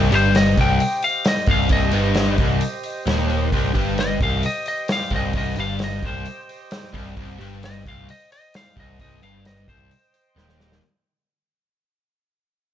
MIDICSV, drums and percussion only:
0, 0, Header, 1, 2, 480
1, 0, Start_track
1, 0, Key_signature, -3, "minor"
1, 0, Tempo, 455235
1, 1813, Time_signature, 4, 2, 24, 8
1, 13427, End_track
2, 0, Start_track
2, 0, Title_t, "Drums"
2, 126, Note_on_c, 9, 46, 63
2, 232, Note_off_c, 9, 46, 0
2, 367, Note_on_c, 9, 46, 75
2, 378, Note_on_c, 9, 38, 100
2, 472, Note_off_c, 9, 46, 0
2, 484, Note_off_c, 9, 38, 0
2, 605, Note_on_c, 9, 46, 62
2, 606, Note_on_c, 9, 36, 102
2, 711, Note_off_c, 9, 36, 0
2, 711, Note_off_c, 9, 46, 0
2, 844, Note_on_c, 9, 46, 74
2, 950, Note_off_c, 9, 46, 0
2, 1079, Note_on_c, 9, 46, 55
2, 1185, Note_off_c, 9, 46, 0
2, 1313, Note_on_c, 9, 46, 73
2, 1325, Note_on_c, 9, 38, 117
2, 1419, Note_off_c, 9, 46, 0
2, 1430, Note_off_c, 9, 38, 0
2, 1441, Note_on_c, 9, 38, 31
2, 1542, Note_on_c, 9, 46, 54
2, 1546, Note_off_c, 9, 38, 0
2, 1555, Note_on_c, 9, 36, 99
2, 1648, Note_off_c, 9, 46, 0
2, 1661, Note_off_c, 9, 36, 0
2, 1783, Note_on_c, 9, 46, 68
2, 1794, Note_on_c, 9, 36, 98
2, 1888, Note_off_c, 9, 46, 0
2, 1899, Note_off_c, 9, 36, 0
2, 2019, Note_on_c, 9, 46, 52
2, 2124, Note_off_c, 9, 46, 0
2, 2261, Note_on_c, 9, 46, 70
2, 2273, Note_on_c, 9, 38, 102
2, 2367, Note_off_c, 9, 46, 0
2, 2379, Note_off_c, 9, 38, 0
2, 2506, Note_on_c, 9, 46, 54
2, 2513, Note_on_c, 9, 36, 100
2, 2612, Note_off_c, 9, 46, 0
2, 2619, Note_off_c, 9, 36, 0
2, 2749, Note_on_c, 9, 46, 66
2, 2855, Note_off_c, 9, 46, 0
2, 2988, Note_on_c, 9, 46, 54
2, 3094, Note_off_c, 9, 46, 0
2, 3234, Note_on_c, 9, 46, 76
2, 3245, Note_on_c, 9, 38, 113
2, 3339, Note_off_c, 9, 46, 0
2, 3351, Note_off_c, 9, 38, 0
2, 3476, Note_on_c, 9, 46, 52
2, 3582, Note_off_c, 9, 46, 0
2, 3716, Note_on_c, 9, 36, 99
2, 3719, Note_on_c, 9, 46, 74
2, 3821, Note_off_c, 9, 36, 0
2, 3824, Note_off_c, 9, 46, 0
2, 3956, Note_on_c, 9, 46, 60
2, 3957, Note_on_c, 9, 36, 97
2, 4062, Note_off_c, 9, 36, 0
2, 4062, Note_off_c, 9, 46, 0
2, 4194, Note_on_c, 9, 46, 74
2, 4206, Note_on_c, 9, 38, 103
2, 4299, Note_off_c, 9, 46, 0
2, 4311, Note_off_c, 9, 38, 0
2, 4434, Note_on_c, 9, 46, 58
2, 4436, Note_on_c, 9, 36, 109
2, 4540, Note_off_c, 9, 46, 0
2, 4541, Note_off_c, 9, 36, 0
2, 4671, Note_on_c, 9, 46, 75
2, 4776, Note_off_c, 9, 46, 0
2, 4910, Note_on_c, 9, 46, 55
2, 5016, Note_off_c, 9, 46, 0
2, 5146, Note_on_c, 9, 46, 76
2, 5158, Note_on_c, 9, 38, 112
2, 5252, Note_off_c, 9, 46, 0
2, 5263, Note_off_c, 9, 38, 0
2, 5279, Note_on_c, 9, 38, 31
2, 5380, Note_on_c, 9, 46, 52
2, 5385, Note_off_c, 9, 38, 0
2, 5390, Note_on_c, 9, 36, 95
2, 5485, Note_off_c, 9, 46, 0
2, 5496, Note_off_c, 9, 36, 0
2, 5622, Note_on_c, 9, 46, 75
2, 5630, Note_on_c, 9, 36, 105
2, 5727, Note_off_c, 9, 46, 0
2, 5735, Note_off_c, 9, 36, 0
2, 5858, Note_on_c, 9, 46, 56
2, 5963, Note_off_c, 9, 46, 0
2, 6105, Note_on_c, 9, 46, 70
2, 6116, Note_on_c, 9, 38, 102
2, 6210, Note_off_c, 9, 46, 0
2, 6222, Note_off_c, 9, 38, 0
2, 6352, Note_on_c, 9, 46, 53
2, 6354, Note_on_c, 9, 36, 111
2, 6458, Note_off_c, 9, 46, 0
2, 6460, Note_off_c, 9, 36, 0
2, 6595, Note_on_c, 9, 46, 66
2, 6700, Note_off_c, 9, 46, 0
2, 6844, Note_on_c, 9, 46, 55
2, 6950, Note_off_c, 9, 46, 0
2, 7073, Note_on_c, 9, 46, 77
2, 7085, Note_on_c, 9, 38, 111
2, 7179, Note_off_c, 9, 46, 0
2, 7190, Note_off_c, 9, 38, 0
2, 7211, Note_on_c, 9, 38, 30
2, 7317, Note_off_c, 9, 38, 0
2, 7318, Note_on_c, 9, 36, 93
2, 7320, Note_on_c, 9, 46, 57
2, 7424, Note_off_c, 9, 36, 0
2, 7425, Note_off_c, 9, 46, 0
2, 7559, Note_on_c, 9, 36, 107
2, 7561, Note_on_c, 9, 46, 72
2, 7665, Note_off_c, 9, 36, 0
2, 7666, Note_off_c, 9, 46, 0
2, 7809, Note_on_c, 9, 46, 56
2, 7915, Note_off_c, 9, 46, 0
2, 8044, Note_on_c, 9, 46, 75
2, 8056, Note_on_c, 9, 38, 95
2, 8149, Note_off_c, 9, 46, 0
2, 8161, Note_off_c, 9, 38, 0
2, 8284, Note_on_c, 9, 36, 102
2, 8290, Note_on_c, 9, 46, 62
2, 8389, Note_off_c, 9, 36, 0
2, 8396, Note_off_c, 9, 46, 0
2, 8527, Note_on_c, 9, 46, 75
2, 8633, Note_off_c, 9, 46, 0
2, 8772, Note_on_c, 9, 46, 60
2, 8877, Note_off_c, 9, 46, 0
2, 9005, Note_on_c, 9, 46, 83
2, 9017, Note_on_c, 9, 38, 119
2, 9111, Note_off_c, 9, 46, 0
2, 9122, Note_off_c, 9, 38, 0
2, 9246, Note_on_c, 9, 36, 99
2, 9251, Note_on_c, 9, 46, 56
2, 9351, Note_off_c, 9, 36, 0
2, 9357, Note_off_c, 9, 46, 0
2, 9483, Note_on_c, 9, 36, 97
2, 9485, Note_on_c, 9, 46, 74
2, 9589, Note_off_c, 9, 36, 0
2, 9590, Note_off_c, 9, 46, 0
2, 9731, Note_on_c, 9, 46, 55
2, 9837, Note_off_c, 9, 46, 0
2, 9967, Note_on_c, 9, 46, 72
2, 9978, Note_on_c, 9, 38, 104
2, 10072, Note_off_c, 9, 46, 0
2, 10084, Note_off_c, 9, 38, 0
2, 10206, Note_on_c, 9, 36, 97
2, 10208, Note_on_c, 9, 46, 54
2, 10311, Note_off_c, 9, 36, 0
2, 10313, Note_off_c, 9, 46, 0
2, 10448, Note_on_c, 9, 46, 66
2, 10554, Note_off_c, 9, 46, 0
2, 10689, Note_on_c, 9, 46, 50
2, 10795, Note_off_c, 9, 46, 0
2, 10941, Note_on_c, 9, 38, 63
2, 11047, Note_off_c, 9, 38, 0
2, 11058, Note_on_c, 9, 38, 57
2, 11164, Note_off_c, 9, 38, 0
2, 11181, Note_on_c, 9, 38, 84
2, 11287, Note_off_c, 9, 38, 0
2, 11305, Note_on_c, 9, 38, 83
2, 11410, Note_off_c, 9, 38, 0
2, 13427, End_track
0, 0, End_of_file